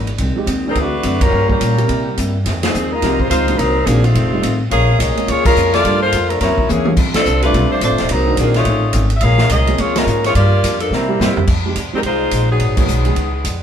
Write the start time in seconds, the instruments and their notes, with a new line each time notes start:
Already playing: upright bass G#1, hollow-body jazz guitar D#4
0.07 ride
0.18 upright bass C2, hollow-body jazz guitar F2 D#3 G#3 C4, kick, ride
0.36 grand piano F3 G#3 C4 D#4 G4
0.46 upright bass D#2, hollow-body jazz guitar F2 D#3 G#3 C4, kick, hi-hat pedal, ride
0.66 grand piano E3 A3 C4 D4 G#4, saxophone section G3 C4 D#4
0.70 hollow-body jazz guitar D3, saxophone section A#4
0.75 upright bass D2, hollow-body jazz guitar A3 C4 F#4, kick, ride
0.80 saxophone section A3 D4 F#4 B4
1.03 upright bass F#2, hollow-body jazz guitar D3 A3 C4 F#4, kick, hi-hat pedal, ride
1.21 saxophone section G3 C#4 F4 A#4, kick, ride
1.31 hollow-body jazz guitar G2 F3 A#3 C#4, upright bass G2
1.48 grand piano G3 A#3 C#4 F4 G4, saxophone section G3 C#4 F4 A#4, kick
1.60 hollow-body jazz guitar G2 F3 A#3 C#4, upright bass A#2, kick, hi-hat pedal, ride
1.77 grand piano G3 A#3 C4 E4 A#4, ride
1.88 hollow-body jazz guitar C3 G3 A#3 E4, kick, ride
2.18 upright bass G2, hollow-body jazz guitar C3 G3 A#3 E4, kick, hi-hat pedal, ride
2.44 hollow-body jazz guitar F2 D#3 G#3 C4, upright bass F2, kick, snare, ride
2.63 saxophone section F3 C4 D#4 G#4, snare, ride
2.74 upright bass D#2, hollow-body jazz guitar F2 D#3 G#3 C4, hi-hat pedal
2.92 saxophone section G#3 D#4 F4 A#4
3.01 upright bass C2, hollow-body jazz guitar F2 D#3 G#3 C4, grand piano F3 G#3 C4 D#4 G4, kick, snare, ride
3.20 saxophone section G#3 D#4 F4 C5, kick
3.30 upright bass C#2, hollow-body jazz guitar F2 D#3 G#3 C4, saxophone section G#3 D#4 F4 C5, kick, hi-hat pedal, ride
3.48 grand piano D#3 A#3 C4 D4 F#4, ride
3.57 upright bass C2, hollow-body jazz guitar C3 F#3 A#3 D#4, saxophone section F#3 C4 D#4 A#4, kick, ride
3.85 upright bass A#1, hollow-body jazz guitar C3 F#3 A#3 D#4, grand piano D#3 A#3 C4 D4 F#4, saxophone section F3 A#3 D4 G#4, kick, hi-hat pedal, ride
4.03 saxophone section A3 C4 D#4 F4, ride
4.14 upright bass F1, hollow-body jazz guitar F2 D#3 A3 C4, kick, ride
4.33 grand piano G3 A3 C4 D#4 F4
4.42 upright bass A1, hollow-body jazz guitar F2 D#3 A3 C4, kick, hi-hat pedal, ride
4.70 upright bass A#1, hollow-body jazz guitar A#2 F3 G#3 C#4, saxophone section C#4 G#4 A#4 F5, kick, ride
4.98 upright bass C2, hollow-body jazz guitar A#2 F3 G#3 C#4, saxophone section C#4 G#4 A#4 D#5, kick, hi-hat pedal, ride
5.16 grand piano G#3 A#3 C4 C#4 F4, muted upright bass stroke, ride
5.27 upright bass C#2, hollow-body jazz guitar A#2 F3 G#3 C#4, saxophone section A#3 F4 G#4 C#5, kick, ride
5.45 saxophone section G#3 C#4 F4 A#4, kick, crash
5.56 upright bass F2, hollow-body jazz guitar A#2 F3 G#3 C#4, hi-hat pedal
5.74 saxophone section A#3 F4 A4 D5, snare, ride
5.84 upright bass G2, grand piano G3 A3 A#3 D4 F4, hollow-body jazz guitar G3 A#3 F4 A4, kick, ride
6.03 saxophone section A#3 F4 A4 C5
6.12 upright bass F2, hollow-body jazz guitar G3 A#3 F4 A4, kick, hi-hat pedal, ride
6.29 saxophone section F3 A3 D4 A#4, ride
6.40 upright bass F#2, hollow-body jazz guitar F#2 E3 A#3 C4, saxophone section F#3 C#4 E4 A#4, kick, snare, ride
6.51 upright bass E2
6.58 upright bass C#2, kick
6.69 upright bass D#2, hollow-body jazz guitar F#2 E3 A#3 C4, saxophone section E3 A#3 C#4 G#4, hi-hat pedal, high tom
6.85 grand piano G3 A3 C4 D4 F4, high tom
6.96 upright bass F2, hollow-body jazz guitar F3 C4 D4 A4, kick, crash
7.14 saxophone section F3 C4 D4 A4, muted upright bass stroke, snare, ride
7.25 upright bass C2, hollow-body jazz guitar F3 C4 D4 A4, hi-hat pedal
7.42 grand piano G3 A3 C4 D4 F4, saxophone section A3 D4 F4 B4, ride
7.54 upright bass B1, hollow-body jazz guitar F3 C4 D4 A4, kick, ride
7.72 saxophone section A3 D4 F4 C5
7.81 upright bass A1, hollow-body jazz guitar F3 C4 D4 A4, saxophone section A3 D4 F4 C5, kick, hi-hat pedal, ride
7.91 upright bass F1
7.98 upright bass D1, snare, ride
8.09 upright bass C2, hollow-body jazz guitar C3 F#3 A#3 D#4, saxophone section F#3 C4 D#4 A#4, kick, ride
8.26 grand piano D#3 A#3 C4 D4 F#4
8.37 upright bass A#1, hollow-body jazz guitar C3 F#3 A#3 D#4, saxophone section F3 A#3 D4 G#4, kick, hi-hat pedal, ride
8.54 saxophone section A3 C#4 D#4 F4, snare, ride
8.65 upright bass A1, hollow-body jazz guitar F2 D#3 A3 C#4, kick, ride
8.93 upright bass G#1, hollow-body jazz guitar F2 D#3 A3 C#4, kick, hi-hat pedal, ride
9.10 ride
9.17 saxophone section E5, ride
9.21 upright bass A#1, hollow-body jazz guitar A#2 F3 G#3 C#4, saxophone section C#4 G#4 A#4 F5, kick
9.38 snare
9.49 upright bass C2, hollow-body jazz guitar A#2 F3 G#3 C#4, saxophone section C#4 G#4 A#4 D#5, kick, hi-hat pedal, ride
9.67 grand piano F3 A#3 C4 C#4 G#4, ride
9.77 upright bass C#2, hollow-body jazz guitar A#2 F3 G#3 C#4, saxophone section A#3 F4 G#4 C#5, kick, ride
9.96 saxophone section G#3 C#4 F4 A#4, snare, ride
10.05 upright bass G#2, hollow-body jazz guitar A#2 F3 G#3 C#4, hi-hat pedal
10.24 saxophone section A#3 F4 G#4 C#5, snare, ride
10.35 upright bass G2, hollow-body jazz guitar G2 F3 A#3 D4, saxophone section A#3 F4 G4 D5, kick, ride
10.63 upright bass F2, hollow-body jazz guitar G2 F3 A#3 D4, kick, hi-hat pedal, ride
10.80 saxophone section F3 A#3 D4 A4, ride
10.90 upright bass C3, hollow-body jazz guitar C3 G3 A#3 E4, saxophone section G3 C4 E4 A#4, snare
11.08 grand piano G3 A#3 C4 E4 G4
11.20 upright bass G2, hollow-body jazz guitar C3 G3 A#3 E4, saxophone section A#3 E4 G4 C5, snare, hi-hat pedal
11.36 muted upright bass stroke, floor tom
11.47 upright bass F2, kick, crash
11.66 grand piano F3 G#3 C4 D#4 G4
11.75 upright bass C#2, kick, hi-hat pedal, ride
11.92 grand piano F3 G#3 C4 D#4 G4, saxophone section G3 C4 D#4 A#4, muted upright bass stroke
12.03 upright bass C2, saxophone section G#3 D#4 F4, kick, ride
12.07 saxophone section C5
12.31 upright bass A#1, kick, hi-hat pedal, ride
12.51 saxophone section F#3 B3 D#4 G#4
12.59 upright bass G#1, kick, ride
12.77 grand piano D#3 G#3 A#3 B3 F#4, saxophone section F#3 B3 D#4 G#4, kick, crash
12.88 upright bass B1, hi-hat pedal
13.04 grand piano D#3 G#3 B3 C#4 G#4, ride
13.16 upright bass C#2, kick, ride
13.44 upright bass F2, kick, hi-hat pedal, ride